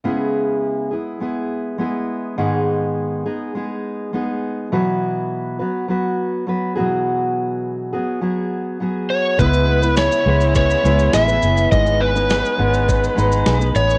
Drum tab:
SH |----------------|----------------|----------------|----------------|
SD |----------------|----------------|----------------|----------------|
BD |----------------|----------------|----------------|----------------|

SH |xx-xxx-xxxxxxxxx|xx-xxx-xxxxxxxxx|
SD |----o-------o---|----o-------o---|
BD |o-------o-------|o-------o-------|